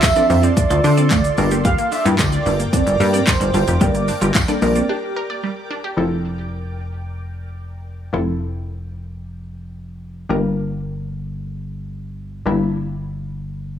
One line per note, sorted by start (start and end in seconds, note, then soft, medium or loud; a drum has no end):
0.00 1.34 F4 medium
0.00 1.34 A4 medium
0.00 5.93 D5 medium
0.00 0.27 E5 loud
0.00 1.34 C6 medium
0.00 kick loud
0.00 clap loud
0.00 closed hi-hat medium
0.00 tambourine medium
0.00 shaker medium
0.16 0.26 F3 medium
0.16 0.26 C4 medium
0.16 0.25 D4 medium
0.16 0.26 D4 medium
0.16 0.26 A4 medium
0.16 0.24 D5 medium
0.16 closed hi-hat soft
0.16 shaker soft
0.30 0.50 F2 medium
0.30 1.10 F3 medium
0.30 0.37 F3 medium
0.30 1.10 C4 medium
0.30 1.10 D4 medium
0.30 1.10 C5 medium
0.30 0.45 E5 loud
0.30 muted clean electric guitar stroke soft
0.30 open hi-hat medium
0.30 shaker soft
0.43 0.52 C4 medium
0.43 0.51 C4 medium
0.43 1.11 D5 loud
0.43 closed hi-hat medium
0.43 shaker medium
0.57 0.64 D4 medium
0.57 kick loud
0.57 closed hi-hat medium
0.57 shaker medium
0.70 0.80 D2 loud
0.70 0.79 F4 medium
0.70 closed hi-hat medium
0.70 shaker medium
0.84 1.13 D3 medium
0.84 0.91 C5 medium
0.84 muted clean electric guitar stroke soft
0.84 open hi-hat medium
0.84 shaker medium
0.97 1.06 C4 medium
0.97 1.05 D5 medium
0.97 closed hi-hat soft
0.97 shaker medium
1.11 1.31 D2 loud
1.11 1.18 F3 medium
1.11 1.19 A3 medium
1.11 1.61 D5 loud
1.11 kick loud
1.11 clap loud
1.11 closed hi-hat medium
1.11 tambourine medium
1.11 shaker medium
1.24 muted clean electric guitar stroke soft
1.24 closed hi-hat medium
1.24 shaker medium
1.38 1.78 G1 loud
1.38 1.92 G3 medium
1.38 1.92 A#3 medium
1.38 1.45 D4 medium
1.38 1.92 D4 medium
1.38 5.93 A#4 medium
1.38 1.92 A#4 medium
1.38 5.93 G5 medium
1.38 5.93 D6 loud
1.38 open hi-hat medium
1.38 shaker medium
1.51 1.60 A#3 medium
1.51 1.59 G4 medium
1.51 closed hi-hat medium
1.51 shaker medium
1.65 1.72 G3 medium
1.65 1.73 G4 medium
1.65 1.90 F5 loud
1.65 kick loud
1.65 closed hi-hat medium
1.65 shaker medium
1.78 1.86 A#3 medium
1.78 closed hi-hat soft
1.78 shaker soft
1.92 1.99 D4 medium
1.92 2.04 E5 loud
1.92 muted clean electric guitar stroke soft
1.92 open hi-hat medium
1.92 shaker medium
2.05 2.16 G2 loud
2.05 2.75 G3 medium
2.05 2.75 A#3 medium
2.05 2.76 D4 medium
2.05 2.76 E4 medium
2.05 2.14 F4 medium
2.05 2.13 G4 medium
2.05 closed hi-hat medium
2.05 shaker medium
2.19 2.39 D2 medium
2.19 2.70 D5 loud
2.19 kick loud
2.19 clap loud
2.19 closed hi-hat medium
2.19 tambourine medium
2.19 shaker medium
2.32 2.40 D5 medium
2.32 closed hi-hat soft
2.32 shaker soft
2.46 2.66 G1 loud
2.46 2.53 G3 medium
2.46 2.55 D4 medium
2.46 open hi-hat medium
2.46 shaker medium
2.60 2.67 A#3 medium
2.60 closed hi-hat medium
2.60 shaker medium
2.73 2.81 C4 medium
2.73 2.80 D4 medium
2.73 3.23 D5 loud
2.73 kick loud
2.73 closed hi-hat medium
2.73 shaker medium
2.87 2.97 G1 loud
2.87 muted clean electric guitar stroke soft
2.87 closed hi-hat medium
2.87 shaker medium
3.00 3.20 G2 loud
3.00 3.60 G3 medium
3.00 3.60 A#3 medium
3.00 3.60 D4 medium
3.00 3.07 A#4 medium
3.00 3.60 A#4 medium
3.00 open hi-hat medium
3.00 shaker medium
3.13 3.22 C4 medium
3.13 3.21 D5 medium
3.13 closed hi-hat soft
3.13 shaker medium
3.27 3.34 G3 medium
3.27 3.83 C5 loud
3.27 kick loud
3.27 clap loud
3.27 closed hi-hat medium
3.27 tambourine medium
3.27 shaker medium
3.40 3.51 G1 medium
3.40 3.49 D4 medium
3.40 closed hi-hat medium
3.40 shaker medium
3.54 3.64 G1 medium
3.54 3.61 D4 medium
3.54 3.62 F4 medium
3.54 open hi-hat medium
3.54 shaker medium
3.68 3.78 F1 medium
3.68 3.75 G4 medium
3.68 closed hi-hat medium
3.68 shaker medium
3.81 4.11 G1 loud
3.81 4.31 G3 medium
3.81 3.88 G3 medium
3.81 4.31 A#3 medium
3.81 4.31 D4 medium
3.81 3.89 G4 medium
3.81 4.31 A#4 medium
3.81 4.35 D5 loud
3.81 kick loud
3.81 closed hi-hat medium
3.81 shaker medium
3.95 4.02 A#3 medium
3.95 closed hi-hat soft
3.95 shaker soft
4.08 4.15 D4 medium
4.08 muted clean electric guitar stroke soft
4.08 open hi-hat medium
4.08 shaker medium
4.21 4.32 G1 medium
4.21 4.30 F4 medium
4.21 4.29 G4 medium
4.21 closed hi-hat medium
4.21 shaker medium
4.35 kick loud
4.35 clap loud
4.35 closed hi-hat medium
4.35 tambourine medium
4.35 shaker medium
4.48 4.59 G3 medium
4.48 4.59 A#3 medium
4.48 4.57 D4 medium
4.48 4.59 D4 medium
4.48 4.59 A4 medium
4.48 4.56 D5 medium
4.48 closed hi-hat soft
4.48 shaker soft
4.62 4.82 A#1 medium
4.62 5.42 G3 medium
4.62 4.70 G3 medium
4.62 5.42 A#3 medium
4.62 5.42 D4 medium
4.62 5.42 A#4 medium
4.62 4.87 D5 loud
4.62 muted clean electric guitar stroke soft
4.62 open hi-hat medium
4.62 shaker medium
4.75 4.83 A#3 medium
4.75 4.84 C4 medium
4.75 closed hi-hat medium
4.75 shaker medium
4.89 4.97 D4 medium
4.89 5.40 G4 medium
5.16 5.24 A#4 medium
5.30 5.37 D5 medium
5.43 5.51 G3 medium
5.71 5.78 D4 medium
5.84 5.91 G4 medium
5.97 8.10 F1 medium
5.97 8.09 F3 medium
5.97 8.09 C4 medium
5.97 8.10 E4 medium
5.97 8.10 A4 medium
8.13 10.26 F1 medium
8.13 10.25 F3 medium
8.13 10.26 C4 medium
8.13 10.26 E4 medium
8.13 10.26 A4 medium
10.29 12.42 G1 medium
10.29 12.42 G3 medium
10.29 12.42 A#3 medium
10.29 12.42 D4 medium
10.29 12.42 A#4 medium
12.46 13.79 G1 medium
12.46 13.79 G3 medium
12.46 13.79 A#3 medium
12.46 13.79 D4 medium
12.46 13.79 E4 medium